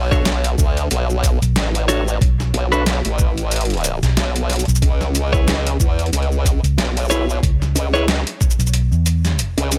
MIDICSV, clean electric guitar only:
0, 0, Header, 1, 2, 480
1, 0, Start_track
1, 0, Tempo, 652174
1, 1627, Time_signature, 4, 2, 24, 8
1, 7201, End_track
2, 0, Start_track
2, 0, Title_t, "Clean electric guitar"
2, 0, Program_c, 0, 27
2, 84, Note_on_c, 0, 73, 111
2, 87, Note_on_c, 0, 69, 87
2, 89, Note_on_c, 0, 66, 82
2, 91, Note_on_c, 0, 62, 86
2, 221, Note_off_c, 0, 62, 0
2, 221, Note_off_c, 0, 66, 0
2, 221, Note_off_c, 0, 69, 0
2, 221, Note_off_c, 0, 73, 0
2, 1385, Note_on_c, 0, 73, 109
2, 1388, Note_on_c, 0, 69, 88
2, 1390, Note_on_c, 0, 66, 91
2, 1393, Note_on_c, 0, 62, 89
2, 1494, Note_off_c, 0, 62, 0
2, 1494, Note_off_c, 0, 66, 0
2, 1494, Note_off_c, 0, 69, 0
2, 1494, Note_off_c, 0, 73, 0
2, 2000, Note_on_c, 0, 71, 109
2, 2002, Note_on_c, 0, 69, 84
2, 2007, Note_on_c, 0, 66, 84
2, 2009, Note_on_c, 0, 62, 84
2, 2083, Note_off_c, 0, 62, 0
2, 2083, Note_off_c, 0, 66, 0
2, 2083, Note_off_c, 0, 69, 0
2, 2084, Note_off_c, 0, 71, 0
2, 3920, Note_on_c, 0, 73, 112
2, 3923, Note_on_c, 0, 71, 86
2, 3926, Note_on_c, 0, 68, 86
2, 3930, Note_on_c, 0, 64, 86
2, 4059, Note_off_c, 0, 64, 0
2, 4059, Note_off_c, 0, 71, 0
2, 4059, Note_off_c, 0, 73, 0
2, 4060, Note_off_c, 0, 68, 0
2, 5224, Note_on_c, 0, 73, 106
2, 5230, Note_on_c, 0, 71, 82
2, 5231, Note_on_c, 0, 68, 80
2, 5234, Note_on_c, 0, 64, 92
2, 5334, Note_off_c, 0, 64, 0
2, 5334, Note_off_c, 0, 68, 0
2, 5334, Note_off_c, 0, 73, 0
2, 5335, Note_off_c, 0, 71, 0
2, 5840, Note_on_c, 0, 73, 104
2, 5845, Note_on_c, 0, 71, 80
2, 5848, Note_on_c, 0, 68, 82
2, 5853, Note_on_c, 0, 64, 80
2, 5924, Note_off_c, 0, 68, 0
2, 5924, Note_off_c, 0, 71, 0
2, 5924, Note_off_c, 0, 73, 0
2, 5925, Note_off_c, 0, 64, 0
2, 7201, End_track
0, 0, End_of_file